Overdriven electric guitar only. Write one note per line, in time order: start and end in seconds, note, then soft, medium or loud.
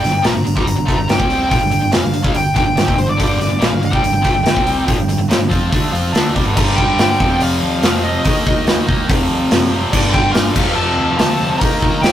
0.02 0.11 G2 medium
0.02 0.11 D3 medium
0.12 0.23 G2 medium
0.12 0.22 D3 medium
0.22 0.33 A#2 medium
0.22 0.33 F3 loud
0.32 0.43 G2 medium
0.32 0.43 D3 medium
0.44 0.55 G2 medium
0.44 0.55 D3 medium
0.56 0.65 C3 medium
0.56 0.66 G3 loud
0.66 0.75 G2 medium
0.66 0.75 D3 medium
0.76 0.87 G2 medium
0.76 0.84 D3 medium
0.86 0.96 D3 medium
0.86 0.97 A3 medium
0.97 1.07 G2 medium
0.97 1.07 D3 medium
1.08 1.19 G2 medium
1.08 1.17 D3 medium
1.17 1.49 C3 medium
1.17 1.49 G3 medium
1.17 1.50 C4 medium
1.50 1.60 A#2 medium
1.50 1.60 F3 loud
1.61 1.70 G2 medium
1.61 1.71 D3 medium
1.71 1.80 G2 medium
1.71 1.80 D3 medium
1.81 1.92 G2 medium
1.81 1.92 D3 medium
1.92 2.02 F2 medium
1.92 2.02 C3 medium
2.02 2.12 G2 medium
2.02 2.13 D3 medium
2.13 2.24 G2 medium
2.13 2.23 D3 medium
2.23 2.34 C#3 medium
2.23 2.34 G#3 medium
2.34 2.51 G2 medium
2.34 2.52 D3 medium
2.55 2.64 G2 medium
2.55 2.65 D3 loud
2.65 2.75 G2 medium
2.65 2.76 D3 medium
2.76 2.86 G2 medium
2.76 2.86 D3 medium
2.86 2.96 F2 medium
2.86 2.96 C3 medium
2.97 3.06 G2 medium
2.97 3.06 D3 medium
3.07 3.16 G2 medium
3.07 3.17 D3 medium
3.17 3.37 G2 medium
3.17 3.38 D3 loud
3.17 3.39 G3 medium
3.38 3.48 G2 medium
3.38 3.48 D3 medium
3.49 3.61 G2 medium
3.49 3.59 D3 medium
3.59 3.69 A#2 medium
3.59 3.70 F3 medium
3.69 3.80 G2 medium
3.69 3.80 D3 medium
3.81 3.92 G2 medium
3.81 3.90 D3 medium
3.91 4.02 C3 medium
3.91 4.02 G3 medium
4.02 4.11 G2 medium
4.02 4.11 D3 medium
4.12 4.24 G2 medium
4.12 4.20 D3 medium
4.22 4.32 D3 medium
4.22 4.34 A3 loud
4.33 4.42 G2 medium
4.33 4.42 D3 medium
4.43 4.55 G2 medium
4.43 4.53 D3 medium
4.53 4.85 C3 medium
4.53 4.86 G3 medium
4.53 4.87 C4 medium
4.85 4.97 A#2 medium
4.85 4.97 F3 medium
4.97 5.07 G2 medium
4.97 5.08 D3 medium
5.09 5.17 G2 medium
5.09 5.17 D3 medium
5.18 5.28 G2 medium
5.18 5.29 D3 medium
5.29 5.39 F2 medium
5.29 5.39 C3 loud
5.39 5.51 G2 medium
5.39 5.48 D3 medium
5.49 5.70 F3 medium
5.49 5.70 C4 medium
5.49 5.71 F4 medium
5.70 5.90 D3 medium
5.70 5.92 A3 medium
5.70 5.92 D4 loud
5.91 6.12 F3 medium
5.91 6.13 C4 medium
5.91 6.13 F4 loud
6.12 6.34 D3 medium
6.12 6.34 A3 loud
6.12 6.34 D4 medium
6.34 6.45 C3 medium
6.34 6.45 G3 medium
6.44 6.53 G2 medium
6.44 6.55 D3 medium
6.54 7.17 G2 medium
6.54 7.18 D3 loud
6.58 7.19 G3 medium
7.19 7.80 F2 medium
7.19 7.82 C3 loud
7.19 7.83 F3 loud
7.82 8.23 F2 medium
7.82 8.23 C3 medium
7.82 8.25 F3 medium
8.24 8.86 D#3 medium
8.24 8.87 A#3 medium
8.24 8.86 D#4 loud
8.87 9.08 A#3 medium
8.87 9.07 D#4 medium
8.91 9.09 D#3 medium
9.07 9.70 F2 medium
9.07 9.71 C3 loud
9.11 9.68 F3 loud
9.70 9.92 C3 medium
9.70 9.90 F3 medium
9.74 9.91 F2 medium
9.92 10.53 G2 medium
9.92 10.55 D3 loud
9.92 10.56 G3 loud
10.54 11.15 F2 loud
10.54 11.17 C3 loud
10.54 11.18 F3 medium
11.16 11.58 F2 medium
11.16 11.58 C3 medium
11.16 11.60 F3 medium
11.58 12.12 D#3 medium
11.58 12.12 A#3 medium
11.58 12.12 D#4 loud